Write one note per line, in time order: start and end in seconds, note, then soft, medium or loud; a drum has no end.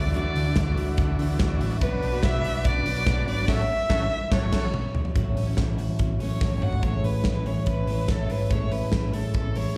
0.00 0.27 D2 medium
0.00 0.15 D3 medium
0.00 0.13 E3 medium
0.00 0.13 A3 medium
0.00 0.13 D4 medium
0.00 1.77 E4 medium
0.00 0.14 F#4 medium
0.00 0.77 F#4 medium
0.00 1.77 F#4 medium
0.00 0.14 D5 medium
0.00 1.78 D5 medium
0.13 0.45 D3 medium
0.13 1.81 D3 medium
0.13 0.45 E3 medium
0.13 0.46 A3 medium
0.13 0.45 D4 medium
0.13 0.43 F#4 medium
0.13 0.73 D5 medium
0.13 closed hi-hat medium
0.35 0.52 D2 medium
0.35 0.98 D4 medium
0.35 open hi-hat medium
0.45 0.67 A3 soft
0.45 0.66 D4 soft
0.45 0.65 F#4 soft
0.56 0.73 D2 medium
0.56 1.17 A3 medium
0.56 kick loud
0.56 snare loud
0.56 closed hi-hat medium
0.66 1.18 A3 soft
0.66 1.20 D4 soft
0.66 1.21 F#4 medium
0.77 0.94 D2 loud
0.77 1.60 F#4 medium
0.77 open hi-hat medium
0.97 1.15 D2 loud
0.97 1.40 D4 medium
0.97 kick loud
0.97 closed hi-hat medium
1.19 1.36 D2 medium
1.19 1.38 E3 medium
1.19 1.85 A3 medium
1.19 1.39 A3 medium
1.19 1.40 D4 medium
1.19 1.41 F#4 medium
1.19 open hi-hat medium
1.39 1.57 D2 medium
1.39 1.58 E3 medium
1.39 1.59 A3 medium
1.39 1.86 D4 medium
1.39 1.60 D4 medium
1.39 1.61 F#4 medium
1.39 kick loud
1.39 snare loud
1.39 closed hi-hat medium
1.59 1.77 A1 medium
1.59 1.81 E3 medium
1.59 1.81 A3 medium
1.59 1.81 D4 medium
1.59 2.44 F#4 medium
1.59 1.81 F#4 medium
1.59 open hi-hat medium
1.81 1.99 B1 loud
1.81 2.12 B2 medium
1.81 3.49 B2 medium
1.81 2.13 F#3 medium
1.81 2.13 B3 medium
1.81 2.12 D4 medium
1.81 3.45 F#4 medium
1.81 2.11 F#4 medium
1.81 2.25 B4 loud
1.81 3.45 B4 medium
1.81 3.46 D5 medium
1.81 kick loud
1.81 closed hi-hat medium
2.03 2.20 B1 medium
2.03 2.64 D4 medium
2.03 open hi-hat medium
2.12 2.34 B3 soft
2.12 2.33 D4 medium
2.12 2.32 F#4 medium
2.23 2.40 B1 medium
2.23 2.85 B3 medium
2.23 2.66 E5 loud
2.23 kick loud
2.23 snare loud
2.23 closed hi-hat medium
2.33 2.85 B3 soft
2.33 2.86 D4 medium
2.33 2.87 F#4 medium
2.44 2.61 B1 medium
2.44 3.28 F#4 medium
2.44 open hi-hat medium
2.65 2.82 B1 loud
2.65 3.06 D4 medium
2.65 3.27 D5 loud
2.65 kick loud
2.65 closed hi-hat medium
2.85 3.03 B1 loud
2.85 3.05 F#3 medium
2.85 3.06 B3 medium
2.85 3.49 B3 medium
2.85 3.07 D4 medium
2.85 3.07 F#4 medium
2.85 open hi-hat medium
3.06 3.24 B1 medium
3.06 3.25 F#3 medium
3.06 3.26 B3 medium
3.06 3.49 D4 medium
3.06 3.27 D4 medium
3.06 3.27 F#4 medium
3.06 kick loud
3.06 snare medium
3.06 closed hi-hat medium
3.26 3.44 G#1 loud
3.26 3.47 F#3 medium
3.26 3.48 B3 medium
3.26 3.48 D4 medium
3.26 3.99 F#4 medium
3.26 3.49 F#4 medium
3.26 3.50 D5 loud
3.26 open hi-hat medium
3.47 3.63 A1 medium
3.47 3.62 A2 medium
3.47 3.62 F#3 medium
3.47 3.63 C#4 loud
3.47 3.63 E4 loud
3.47 3.62 F#4 loud
3.47 3.63 A4 loud
3.47 3.63 C#5 loud
3.47 4.32 E5 loud
3.47 kick loud
3.47 snare medium
3.47 crash medium
3.89 4.04 A1 loud
3.89 4.05 F#3 loud
3.89 4.04 C#4 loud
3.89 4.04 E4 loud
3.89 4.04 F#4 loud
3.89 4.04 A4 loud
3.89 4.05 C#5 loud
3.89 kick loud
3.89 snare loud
4.31 4.46 A1 medium
4.31 4.46 A2 medium
4.31 4.46 F#3 loud
4.31 4.46 C#4 loud
4.31 4.47 E4 loud
4.31 4.46 F#4 loud
4.31 4.46 A4 loud
4.31 4.46 C#5 loud
4.31 4.91 C#5 medium
4.31 kick loud
4.31 snare loud
4.51 4.67 A1 medium
4.51 4.66 A2 medium
4.51 4.67 F#3 loud
4.51 4.67 C#4 loud
4.51 4.67 E4 medium
4.51 4.67 F#4 medium
4.51 4.67 A4 loud
4.51 4.67 C#5 loud
4.51 kick loud
4.51 snare loud
4.51 crash medium
4.74 mid tom medium
4.95 floor tom loud
5.05 floor tom medium
5.15 5.33 A1 loud
5.15 5.47 A2 medium
5.15 6.83 A2 medium
5.15 5.47 F#3 medium
5.15 5.46 C#4 medium
5.15 5.45 E4 medium
5.15 5.76 F#4 medium
5.15 kick loud
5.15 closed hi-hat medium
5.37 5.54 A1 medium
5.37 6.19 C#4 medium
5.37 open hi-hat medium
5.46 6.19 F#3 soft
5.46 6.21 C#4 medium
5.46 6.22 E4 medium
5.57 5.75 A1 medium
5.57 6.40 A3 medium
5.57 kick medium
5.57 snare medium
5.57 closed hi-hat medium
5.78 5.96 A1 medium
5.78 6.61 F#4 medium
5.78 open hi-hat medium
5.99 6.17 A1 medium
5.99 6.82 F#3 medium
5.99 kick medium
5.99 closed hi-hat medium
6.19 6.38 A1 loud
6.19 6.39 A2 medium
6.19 6.41 F#3 medium
6.19 7.03 C#4 medium
6.19 6.42 C#4 medium
6.19 6.42 E4 medium
6.19 6.64 C#5 medium
6.19 open hi-hat medium
6.40 6.58 A1 medium
6.40 6.59 A2 medium
6.40 6.60 F#3 medium
6.40 6.83 A3 medium
6.40 6.61 C#4 medium
6.40 6.62 E4 medium
6.40 kick loud
6.40 snare medium
6.52 high tom soft
6.60 6.79 G#1 medium
6.60 6.82 A2 medium
6.60 6.83 F#3 medium
6.60 6.83 C#4 medium
6.60 6.83 E4 medium
6.60 6.87 F#4 medium
6.60 6.85 F#5 medium
6.60 mid tom medium
6.72 floor tom medium
6.83 7.00 A1 medium
6.83 7.35 A2 medium
6.83 7.36 E3 medium
6.83 7.37 G#3 medium
6.83 8.49 A3 medium
6.83 7.36 C#4 medium
6.83 7.34 E4 medium
6.83 7.06 C#5 medium
6.83 kick medium
6.83 closed hi-hat medium
7.03 7.21 A1 medium
7.03 7.66 C#4 soft
7.03 7.48 B4 medium
7.03 open hi-hat medium
7.24 7.42 A1 medium
7.24 7.86 E4 medium
7.24 kick medium
7.24 snare loud
7.35 7.45 G#3 soft
7.35 7.46 C#4 soft
7.35 7.46 E4 soft
7.45 7.63 A1 medium
7.45 7.86 E3 medium
7.45 7.88 G#3 soft
7.45 7.89 C#4 medium
7.45 7.89 E4 medium
7.45 9.13 G#4 medium
7.45 7.67 C#5 medium
7.45 open hi-hat medium
7.66 7.84 A1 medium
7.66 8.08 C#4 medium
7.66 8.11 B4 medium
7.66 kick medium
7.66 closed hi-hat medium
7.87 8.05 A1 medium
7.87 8.07 E3 soft
7.87 8.08 G#3 medium
7.87 8.08 C#4 medium
7.87 8.28 E4 medium
7.87 8.09 E4 medium
7.87 open hi-hat medium
8.08 8.26 A1 medium
8.08 8.28 E3 medium
8.08 8.29 G#3 medium
8.08 8.71 C#4 medium
8.08 8.30 C#4 medium
8.08 8.30 E4 medium
8.08 8.32 A4 medium
8.08 kick loud
8.08 snare medium
8.08 closed hi-hat medium
8.29 8.47 G#1 medium
8.29 8.50 E3 medium
8.29 8.50 G#3 medium
8.29 8.51 C#4 medium
8.29 8.91 E4 medium
8.29 8.51 E4 medium
8.29 8.53 B4 medium
8.29 open hi-hat medium
8.50 8.68 A1 medium
8.50 9.03 A2 medium
8.50 9.03 E3 medium
8.50 9.05 G#3 medium
8.50 9.77 A3 medium
8.50 9.04 C#4 medium
8.50 9.01 E4 medium
8.50 8.74 C#5 medium
8.50 kick loud
8.50 closed hi-hat medium
8.71 8.89 A1 medium
8.71 9.34 C#4 medium
8.71 9.16 B4 medium
8.71 open hi-hat medium
8.92 9.10 A1 medium
8.92 9.55 E4 medium
8.92 kick loud
8.92 snare loud
8.92 closed hi-hat medium
9.03 9.13 G#3 soft
9.03 9.14 C#4 soft
9.03 9.13 E4 soft
9.13 9.30 A1 medium
9.13 9.54 E3 soft
9.13 9.56 G#3 soft
9.13 9.57 C#4 medium
9.13 9.57 E4 medium
9.13 9.77 G#4 medium
9.13 9.34 A4 medium
9.13 open hi-hat medium
9.34 9.52 A1 medium
9.34 9.76 C#4 medium
9.34 9.58 A4 medium
9.34 kick medium
9.34 closed hi-hat medium
9.55 9.73 A1 medium
9.55 9.75 E3 medium
9.55 9.76 G#3 medium
9.55 9.77 C#4 medium
9.55 9.77 E4 medium
9.55 9.77 C#5 medium
9.55 open hi-hat medium